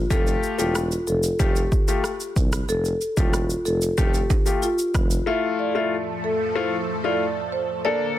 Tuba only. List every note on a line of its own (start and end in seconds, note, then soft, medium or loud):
0.11 0.35 F1 loud
0.59 0.95 E1 medium
1.07 1.32 F1 medium
1.40 1.64 F1 loud
2.36 2.61 C2 medium
2.69 2.93 F1 loud
3.17 3.54 E1 loud
3.66 3.90 F1 medium
3.98 4.22 F1 loud
4.95 5.19 F1 medium